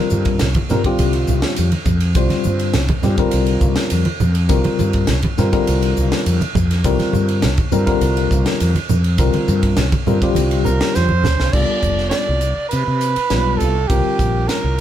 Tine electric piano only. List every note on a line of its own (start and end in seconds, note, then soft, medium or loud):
0.00 0.45 D3 medium
0.00 0.45 G3 medium
0.00 0.45 C4 medium
0.00 0.46 F4 medium
0.00 0.46 A#4 medium
0.70 0.80 D3 medium
0.70 0.81 G3 medium
0.70 0.81 C4 medium
0.70 0.81 F4 medium
0.70 0.81 A#4 medium
0.86 1.69 D3 medium
0.86 1.69 G3 medium
0.86 1.69 C4 medium
0.86 1.69 F4 medium
0.86 1.69 G4 medium
2.15 2.79 D3 medium
2.15 2.79 G3 medium
2.15 2.79 C4 medium
2.15 2.80 F4 medium
2.15 2.79 C5 medium
3.02 3.14 D3 medium
3.02 3.14 G3 medium
3.02 3.15 C4 medium
3.02 3.15 F4 medium
3.02 3.15 G4 medium
3.18 4.03 D3 medium
3.18 4.03 G3 medium
3.18 4.02 C4 medium
3.18 4.03 F4 medium
3.18 4.03 A#4 medium
4.48 5.12 D3 medium
4.48 5.13 G3 medium
4.48 5.13 C4 medium
4.48 5.13 F4 medium
4.48 5.13 A#4 medium
5.38 5.49 D3 medium
5.38 5.49 G3 medium
5.38 5.49 C4 medium
5.38 5.49 F4 medium
5.38 5.49 A#4 medium
5.52 6.37 D3 medium
5.52 6.37 G3 medium
5.52 6.37 C4 medium
5.52 6.37 F4 medium
5.52 6.37 A#4 medium
6.84 7.48 D3 medium
6.84 7.48 G3 medium
6.84 7.48 C4 medium
6.84 7.48 F4 medium
6.84 7.48 A#4 medium
7.72 7.83 D3 medium
7.72 7.83 G3 medium
7.72 7.83 C4 medium
7.72 7.83 F4 medium
7.72 7.83 A#4 medium
7.86 8.71 D3 medium
7.86 8.71 G3 medium
7.86 8.71 C4 medium
7.86 8.71 F4 medium
7.86 8.71 A#4 medium
9.19 9.82 D3 medium
9.19 9.83 G3 medium
9.19 9.82 C4 medium
9.19 9.82 F4 medium
9.19 9.82 A#4 medium
10.07 10.18 D3 medium
10.07 10.18 G3 medium
10.07 10.18 C4 medium
10.07 10.18 F4 medium
10.07 10.18 A#4 medium
10.22 11.06 D3 medium
10.22 11.07 G3 medium
10.22 11.07 C4 medium
10.22 11.07 F4 medium
10.22 11.07 G4 medium
11.53 12.38 G3 medium
11.53 12.38 B3 medium
11.53 12.38 D4 medium
11.53 12.39 F4 medium
11.53 12.39 A4 medium
13.30 13.73 G3 medium
13.30 13.73 B3 medium
13.30 13.73 D4 medium
13.30 13.73 F4 medium
13.30 13.74 B4 medium
13.89 14.74 D3 medium
13.89 14.74 G3 medium
13.89 14.75 C4 medium
13.89 14.75 F4 medium
13.89 14.75 A#4 medium